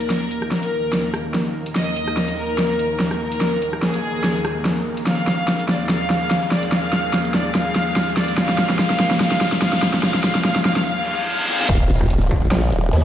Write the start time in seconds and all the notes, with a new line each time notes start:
Already playing: D#2 D#3 A#3 A#4, riser
0.01 closed hi-hat
0.10 snare, closed hi-hat
0.31 closed hi-hat
0.42 cross-stick
0.52 A#4, snare, closed hi-hat
0.63 closed hi-hat
0.93 snare, closed hi-hat
1.14 cross-stick, closed hi-hat
1.34 snare, closed hi-hat
1.66 closed hi-hat
1.76 D#5, snare, closed hi-hat
1.96 closed hi-hat
2.08 cross-stick
2.17 snare, closed hi-hat
2.28 closed hi-hat
2.38 A#4
2.58 snare, closed hi-hat
2.79 closed hi-hat
3.00 snare, closed hi-hat
3.11 cross-stick
3.20 A#4
3.32 closed hi-hat
3.41 snare, closed hi-hat
3.62 closed hi-hat
3.73 cross-stick
3.83 G#4, snare, closed hi-hat
3.94 closed hi-hat
4.24 snare, closed hi-hat
4.45 cross-stick, closed hi-hat
4.65 snare, closed hi-hat
4.97 closed hi-hat
5.07 G#4 F5, snare, closed hi-hat
5.27 snare, closed hi-hat
5.48 snare, closed hi-hat
5.59 closed hi-hat
5.69 D5, snare
5.89 F5, snare, closed hi-hat
6.10 snare, closed hi-hat
6.31 snare, closed hi-hat
6.52 D5, snare, open hi-hat
6.63 closed hi-hat
6.72 F5, snare, closed hi-hat
6.93 snare, closed hi-hat
7.14 snare, closed hi-hat
7.25 closed hi-hat
7.34 D5, snare
7.55 F5, snare, closed hi-hat
7.76 snare, closed hi-hat
7.96 snare, closed hi-hat
8.17 D5, snare, open hi-hat
8.28 closed hi-hat
8.38 F5, snare, closed hi-hat
8.49 snare
8.59 snare, closed hi-hat
8.70 snare
8.79 F5, snare, closed hi-hat
8.90 snare, closed hi-hat
9.00 snare
9.11 snare
9.21 F5, snare, closed hi-hat
9.32 snare
9.41 snare, closed hi-hat
9.52 snare
9.62 F5, snare, closed hi-hat
9.73 snare
9.83 snare, open hi-hat
9.94 snare, closed hi-hat
10.03 F5, snare, closed hi-hat
10.14 snare
10.24 F5, snare, closed hi-hat
10.35 snare, closed hi-hat
10.45 F5, snare, closed hi-hat
10.56 snare, closed hi-hat
10.65 F5, snare
10.77 snare
10.86 F5, reverse cymbal
11.07 F5
11.28 F5
11.48 F5
11.69 D#1, kick, closed hi-hat, crash, impact
11.90 closed hi-hat
12.01 kick, cross-stick
12.10 closed hi-hat
12.21 closed hi-hat
12.31 kick
12.52 A#1, snare, closed hi-hat
12.72 D#1, closed hi-hat
12.93 D#2, closed hi-hat